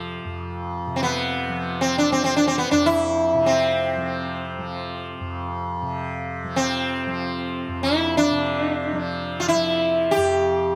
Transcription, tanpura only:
0, 0, Header, 1, 2, 480
1, 0, Start_track
1, 0, Tempo, 500000
1, 10322, End_track
2, 0, Start_track
2, 0, Title_t, "Tanpura"
2, 0, Program_c, 0, 104
2, 0, Note_on_c, 0, 41, 59
2, 0, Note_on_c, 0, 48, 61
2, 0, Note_on_c, 0, 53, 57
2, 235, Note_off_c, 0, 41, 0
2, 239, Note_on_c, 0, 41, 55
2, 831, Note_off_c, 0, 48, 0
2, 835, Note_on_c, 0, 48, 55
2, 1426, Note_off_c, 0, 53, 0
2, 1426, Note_on_c, 0, 53, 54
2, 2033, Note_off_c, 0, 53, 0
2, 2033, Note_on_c, 0, 53, 54
2, 2604, Note_off_c, 0, 41, 0
2, 2608, Note_on_c, 0, 41, 55
2, 3206, Note_off_c, 0, 48, 0
2, 3210, Note_on_c, 0, 48, 58
2, 3809, Note_off_c, 0, 53, 0
2, 3809, Note_on_c, 0, 53, 49
2, 4401, Note_off_c, 0, 53, 0
2, 4401, Note_on_c, 0, 53, 54
2, 4990, Note_off_c, 0, 41, 0
2, 4994, Note_on_c, 0, 41, 52
2, 5585, Note_off_c, 0, 48, 0
2, 5588, Note_on_c, 0, 48, 57
2, 6182, Note_off_c, 0, 53, 0
2, 6182, Note_on_c, 0, 53, 56
2, 6785, Note_off_c, 0, 53, 0
2, 6785, Note_on_c, 0, 53, 56
2, 7371, Note_off_c, 0, 41, 0
2, 7375, Note_on_c, 0, 41, 57
2, 7973, Note_off_c, 0, 48, 0
2, 7977, Note_on_c, 0, 48, 61
2, 8571, Note_off_c, 0, 53, 0
2, 8571, Note_on_c, 0, 53, 62
2, 9164, Note_off_c, 0, 53, 0
2, 9164, Note_on_c, 0, 53, 57
2, 9758, Note_off_c, 0, 41, 0
2, 9762, Note_on_c, 0, 41, 53
2, 10322, Note_off_c, 0, 41, 0
2, 10322, Note_off_c, 0, 48, 0
2, 10322, Note_off_c, 0, 53, 0
2, 10322, End_track
0, 0, End_of_file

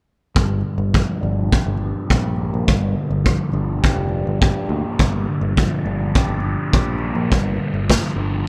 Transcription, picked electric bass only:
0, 0, Header, 1, 2, 480
1, 0, Start_track
1, 0, Key_signature, -2, "minor"
1, 0, Tempo, 579710
1, 292, Time_signature, 4, 2, 24, 8
1, 7021, End_track
2, 0, Start_track
2, 0, Title_t, "Picked electric bass"
2, 0, Program_c, 0, 34
2, 298, Note_on_c, 0, 31, 84
2, 510, Note_off_c, 0, 31, 0
2, 646, Note_on_c, 0, 31, 76
2, 863, Note_off_c, 0, 31, 0
2, 1018, Note_on_c, 0, 31, 70
2, 1230, Note_off_c, 0, 31, 0
2, 1379, Note_on_c, 0, 31, 77
2, 1591, Note_off_c, 0, 31, 0
2, 1745, Note_on_c, 0, 34, 76
2, 2062, Note_off_c, 0, 34, 0
2, 2101, Note_on_c, 0, 34, 72
2, 2205, Note_off_c, 0, 34, 0
2, 2225, Note_on_c, 0, 31, 80
2, 2434, Note_off_c, 0, 31, 0
2, 2571, Note_on_c, 0, 31, 69
2, 2787, Note_off_c, 0, 31, 0
2, 2925, Note_on_c, 0, 31, 71
2, 3143, Note_off_c, 0, 31, 0
2, 3283, Note_on_c, 0, 29, 75
2, 3502, Note_off_c, 0, 29, 0
2, 3536, Note_on_c, 0, 31, 71
2, 3749, Note_off_c, 0, 31, 0
2, 3885, Note_on_c, 0, 38, 64
2, 3996, Note_off_c, 0, 38, 0
2, 4140, Note_on_c, 0, 31, 87
2, 4351, Note_off_c, 0, 31, 0
2, 4482, Note_on_c, 0, 31, 77
2, 4701, Note_off_c, 0, 31, 0
2, 4849, Note_on_c, 0, 31, 70
2, 5065, Note_off_c, 0, 31, 0
2, 5205, Note_on_c, 0, 31, 80
2, 5422, Note_off_c, 0, 31, 0
2, 5574, Note_on_c, 0, 34, 76
2, 5894, Note_off_c, 0, 34, 0
2, 5921, Note_on_c, 0, 34, 72
2, 6033, Note_off_c, 0, 34, 0
2, 6061, Note_on_c, 0, 31, 79
2, 6271, Note_off_c, 0, 31, 0
2, 6406, Note_on_c, 0, 31, 69
2, 6623, Note_off_c, 0, 31, 0
2, 6759, Note_on_c, 0, 31, 66
2, 6979, Note_off_c, 0, 31, 0
2, 7021, End_track
0, 0, End_of_file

